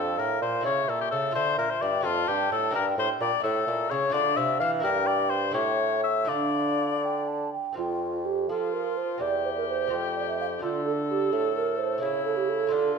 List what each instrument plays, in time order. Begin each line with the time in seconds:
Already playing: lute F2 D4 F4, bassoon F2, oboe A4, flute F5
0.18 bassoon A2, lute A2, oboe A#4
0.41 bassoon A#2, lute A#2, oboe C5
0.61 bassoon C#3, lute A3 E4 A4
0.65 lute C#3, oboe C#5, flute E5
0.88 bassoon A#2, lute A#2, oboe A4
1.01 oboe G4
1.11 bassoon C#3, lute C#3, oboe A4
1.31 bassoon D3, lute A3 F4 A4, oboe C5
1.35 lute D3
1.58 bassoon A#2, lute A#2, oboe A#4
1.70 oboe C5
1.81 bassoon G2, lute G2, oboe D5
2.01 bassoon F2, lute A3 F4 A4, oboe F4
2.05 lute F2, flute A5
2.28 bassoon G2, lute G2, oboe G4
2.51 bassoon A2, lute A2, oboe A4
2.71 lute A#3 D4 G4
2.75 bassoon G2, lute G2, oboe A#4, flute G5
2.98 bassoon A2, lute A2, oboe C5
3.20 lute A#2, bassoon A#2, oboe D5
3.40 lute A3 C#4 E4, oboe A4
3.44 bassoon A2, lute A2, flute E5
3.67 bassoon A#2, lute A#2
3.90 bassoon C#3, lute C#3, oboe C#5
4.10 bassoon D3, lute A3 D4 F4, oboe D5
4.14 lute D3, flute F5
4.36 bassoon C3, lute C3, oboe E5
4.60 bassoon E3, lute E3, oboe F5
4.80 lute A#3 E4 G4, oboe A#4
4.84 bassoon G2, lute G2, flute G5
5.07 oboe D5
5.30 oboe C5
5.51 bassoon A2, lute A3 E4 G4, oboe C#5
5.55 lute A2, flute E5
6.03 oboe E5
6.25 lute A3 D4 F4, oboe D5
6.29 bassoon D3, lute D3, flute F5
7.04 flute G5
7.28 flute A5
7.53 flute G5
7.73 lute A3 C4 F4
7.77 lute F2, bassoon F2, flute F4
8.25 flute G4
8.49 bassoon F3, lute F3, oboe F4, flute A4
8.73 flute A#4
8.97 flute C5
9.18 bassoon E2, lute E2 C4 G4, oboe G4, flute D5
9.45 flute C5
9.57 flute A#4
9.69 flute C5
9.87 bassoon F2, lute A3 C4 F4
9.91 lute F2
10.16 flute D5
10.28 flute E5
10.40 flute F5
10.59 bassoon D3, lute D3 A3 D4 F4, oboe A4
10.63 flute F4
10.86 flute A4
11.10 flute G4
11.32 lute A2, bassoon A2, flute A4
11.56 flute A#4
11.78 flute C5
11.98 bassoon C#3, lute A3 E4 A4, oboe E4, flute C#5
12.02 lute C#3
12.25 flute A4
12.37 flute G4
12.49 flute A4
12.67 lute A3 F4 A4
12.71 lute D3, bassoon D3, oboe F4
12.95 flute A#4